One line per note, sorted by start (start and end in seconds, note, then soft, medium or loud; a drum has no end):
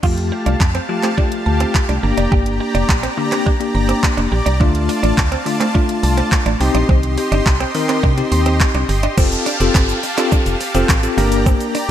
0.03 0.31 F2 loud
0.03 0.15 F3 medium
0.03 0.60 A3 medium
0.03 0.60 F4 medium
0.03 0.13 F4 medium
0.03 4.56 G4 medium
0.03 0.61 G4 medium
0.03 2.01 F5 medium
0.03 2.01 A5 medium
0.03 kick loud
0.03 crash medium
0.17 closed hi-hat medium
0.32 0.44 G4 medium
0.32 muted clean electric guitar stroke soft
0.46 0.56 C2 loud
0.46 0.56 D4 medium
0.46 0.58 F5 medium
0.46 closed hi-hat medium
0.60 0.79 F2 loud
0.60 0.72 A5 medium
0.60 kick loud
0.60 clap loud
0.75 0.85 C4 medium
0.75 0.86 G6 medium
0.75 closed hi-hat medium
0.89 1.01 F3 medium
0.89 1.08 A3 medium
0.89 1.08 F4 medium
0.89 1.08 G4 medium
0.89 muted clean electric guitar stroke soft
1.03 1.15 A3 medium
1.03 1.13 C4 medium
1.03 clap medium
1.03 closed hi-hat medium
1.18 1.94 A3 medium
1.18 1.27 D4 medium
1.18 1.94 F4 medium
1.18 1.29 G4 medium
1.18 1.94 G4 medium
1.18 kick loud
1.32 closed hi-hat medium
1.46 1.65 D2 medium
1.46 1.58 A5 medium
1.46 muted clean electric guitar stroke soft
1.60 1.70 C4 medium
1.60 closed hi-hat medium
1.75 kick loud
1.75 clap loud
1.89 1.99 C2 medium
1.89 2.01 A3 medium
1.89 1.99 D4 medium
1.89 closed hi-hat soft
2.03 2.13 G1 loud
2.03 2.95 A#3 medium
2.03 2.95 D4 medium
2.03 2.15 G4 medium
2.03 2.95 G4 loud
2.03 6.57 D5 medium
2.03 4.58 A#5 medium
2.03 muted clean electric guitar stroke soft
2.17 2.27 F1 medium
2.17 2.27 D4 medium
2.17 2.29 D5 medium
2.17 closed hi-hat medium
2.32 2.60 G1 loud
2.32 2.43 D3 medium
2.32 2.42 G4 medium
2.32 kick loud
2.46 closed hi-hat medium
2.60 2.72 G4 medium
2.60 muted clean electric guitar stroke soft
2.75 2.84 F1 medium
2.75 2.84 D4 medium
2.75 2.86 D5 medium
2.75 closed hi-hat medium
2.89 3.08 A#1 medium
2.89 3.01 A#5 medium
2.89 kick loud
2.89 clap loud
3.03 3.13 C4 medium
3.03 3.15 G6 medium
3.03 closed hi-hat medium
3.17 3.29 D3 medium
3.17 3.46 A#3 medium
3.17 3.46 D4 medium
3.17 3.46 G4 medium
3.17 muted clean electric guitar stroke soft
3.32 3.44 A#3 medium
3.32 3.42 C4 medium
3.32 clap medium
3.32 closed hi-hat medium
3.46 3.56 D4 medium
3.46 3.58 G4 loud
3.46 kick loud
3.60 4.27 A#3 medium
3.60 4.27 D4 medium
3.60 4.27 G4 medium
3.60 closed hi-hat medium
3.75 3.93 G1 medium
3.75 3.86 A#5 medium
3.75 muted clean electric guitar stroke soft
3.89 3.99 C4 medium
3.89 closed hi-hat medium
4.03 kick loud
4.03 clap loud
4.17 4.27 F1 medium
4.17 4.29 A#3 medium
4.17 4.27 D4 medium
4.17 closed hi-hat soft
4.32 4.41 A#1 loud
4.32 4.44 G4 medium
4.32 muted clean electric guitar stroke soft
4.46 4.62 C2 medium
4.46 4.56 D4 medium
4.46 4.58 D5 medium
4.46 closed hi-hat medium
4.60 4.89 D2 loud
4.60 4.72 D3 loud
4.60 5.17 A3 medium
4.60 4.70 D4 medium
4.60 5.18 D4 medium
4.60 6.58 F4 medium
4.60 5.18 F4 loud
4.60 6.59 A5 medium
4.60 kick loud
4.75 closed hi-hat medium
4.89 5.01 F4 medium
4.89 muted clean electric guitar stroke soft
4.89 open hi-hat medium
5.03 5.13 A1 medium
5.03 5.13 D4 medium
5.03 5.15 D5 medium
5.03 closed hi-hat medium
5.18 5.36 D2 medium
5.18 5.29 A5 medium
5.18 kick loud
5.18 clap loud
5.32 5.42 C4 medium
5.32 5.44 F6 medium
5.32 closed hi-hat medium
5.46 5.58 D3 medium
5.46 5.65 A3 medium
5.46 5.65 D4 medium
5.46 5.65 F4 medium
5.46 muted clean electric guitar stroke soft
5.46 open hi-hat medium
5.60 5.72 A3 medium
5.60 5.70 C4 medium
5.60 clap medium
5.60 closed hi-hat medium
5.75 6.51 A3 medium
5.75 5.84 D4 medium
5.75 6.51 D4 medium
5.75 5.86 F4 loud
5.75 6.51 F4 loud
5.75 kick loud
5.89 closed hi-hat medium
6.03 6.22 C2 loud
6.03 6.15 A5 medium
6.03 muted clean electric guitar stroke soft
6.03 open hi-hat medium
6.18 6.27 C4 medium
6.18 closed hi-hat medium
6.32 kick loud
6.32 clap loud
6.46 6.55 A1 loud
6.46 6.58 A3 medium
6.46 6.56 D4 medium
6.46 closed hi-hat soft
6.60 6.70 C2 loud
6.60 7.52 C4 medium
6.60 7.52 D#4 medium
6.60 9.15 G4 medium
6.60 6.72 G4 medium
6.60 7.52 G4 loud
6.60 9.15 D#5 medium
6.60 9.15 C6 medium
6.60 muted clean electric guitar stroke soft
6.60 open hi-hat medium
6.75 6.84 A#1 medium
6.75 6.84 D4 medium
6.75 6.86 D#5 medium
6.75 closed hi-hat medium
6.89 7.17 C2 loud
6.89 7.01 D#3 medium
6.89 6.99 C4 medium
6.89 kick loud
7.03 closed hi-hat medium
7.18 7.29 G4 medium
7.18 muted clean electric guitar stroke soft
7.18 open hi-hat medium
7.32 7.41 G1 loud
7.32 7.42 D4 medium
7.32 7.44 D#5 medium
7.32 closed hi-hat medium
7.46 7.65 C2 medium
7.46 7.58 C6 medium
7.46 kick loud
7.46 clap loud
7.60 7.70 C4 medium
7.60 7.72 G6 medium
7.60 closed hi-hat medium
7.75 7.86 D#3 medium
7.75 8.03 C4 medium
7.75 8.03 D#4 medium
7.75 8.04 A#4 medium
7.75 muted clean electric guitar stroke soft
7.75 open hi-hat medium
7.89 8.01 C4 medium
7.89 7.99 C4 medium
7.89 clap medium
7.89 closed hi-hat medium
8.03 8.22 C3 loud
8.03 8.13 D4 medium
8.03 8.15 G4 loud
8.03 kick loud
8.17 8.84 C4 medium
8.17 8.84 D#4 medium
8.17 8.84 G4 loud
8.17 closed hi-hat medium
8.32 8.60 D#2 loud
8.32 8.44 C6 medium
8.32 muted clean electric guitar stroke soft
8.32 open hi-hat medium
8.46 8.56 C4 medium
8.46 closed hi-hat medium
8.60 kick loud
8.60 clap loud
8.75 8.84 C2 medium
8.75 8.86 C4 medium
8.75 8.85 D4 medium
8.75 closed hi-hat soft
8.89 9.08 G1 medium
8.89 9.01 G4 medium
8.89 muted clean electric guitar stroke soft
8.89 open hi-hat medium
9.03 9.13 D4 medium
9.03 9.15 D#5 medium
9.03 closed hi-hat medium
9.17 9.36 F1 loud
9.17 9.46 C4 medium
9.17 9.27 C4 medium
9.17 9.46 F4 medium
9.17 11.91 G4 medium
9.17 9.46 G4 medium
9.17 9.46 A4 loud
9.17 11.16 F5 medium
9.17 11.16 A5 medium
9.17 kick loud
9.17 crash loud
9.17 downlifter medium
9.17 shaker medium
9.32 closed hi-hat medium
9.32 shaker medium
9.46 9.56 D4 medium
9.46 open hi-hat medium
9.46 shaker medium
9.60 9.70 F1 medium
9.60 9.98 C4 medium
9.60 9.99 F4 medium
9.60 9.99 G4 medium
9.60 9.99 A4 loud
9.60 muted clean electric guitar stroke soft
9.60 closed hi-hat medium
9.60 shaker medium
9.75 9.94 G1 loud
9.75 9.85 C4 medium
9.75 kick loud
9.75 clap loud
9.75 shaker medium
9.89 closed hi-hat medium
9.89 shaker medium
9.89 shaker soft
10.03 muted clean electric guitar stroke soft
10.03 open hi-hat medium
10.03 shaker medium
10.18 10.56 C4 medium
10.18 10.27 D4 medium
10.18 10.56 F4 medium
10.18 10.56 G4 medium
10.18 10.56 A4 loud
10.18 clap medium
10.18 closed hi-hat medium
10.18 shaker medium
10.31 10.42 D4 medium
10.31 kick loud
10.31 shaker medium
10.46 10.56 F1 medium
10.46 closed hi-hat medium
10.46 shaker medium
10.46 shaker soft
10.61 muted clean electric guitar stroke soft
10.61 open hi-hat medium
10.61 shaker medium
10.61 shaker soft
10.75 10.84 F1 medium
10.75 10.94 C4 medium
10.75 10.85 C4 medium
10.75 10.94 F4 medium
10.75 10.94 G4 medium
10.75 10.94 A4 loud
10.75 closed hi-hat medium
10.75 shaker medium
10.89 11.08 A1 medium
10.89 kick loud
10.89 clap loud
10.89 shaker medium
11.03 11.18 C4 medium
11.03 11.18 F4 medium
11.03 11.17 G4 medium
11.03 11.18 A4 medium
11.03 closed hi-hat soft
11.03 shaker soft
11.03 shaker medium
11.18 11.55 G1 loud
11.18 11.75 A#3 medium
11.18 11.27 A#3 medium
11.18 11.75 D4 medium
11.18 11.75 G4 medium
11.18 11.75 A#4 loud
11.18 11.91 D5 medium
11.18 11.91 A#5 medium
11.18 open hi-hat medium
11.18 shaker medium
11.32 closed hi-hat medium
11.32 shaker medium
11.46 11.56 C4 medium
11.46 kick loud
11.46 shaker medium
11.61 closed hi-hat medium
11.61 shaker medium
11.75 11.85 D4 medium
11.75 open hi-hat medium
11.75 shaker medium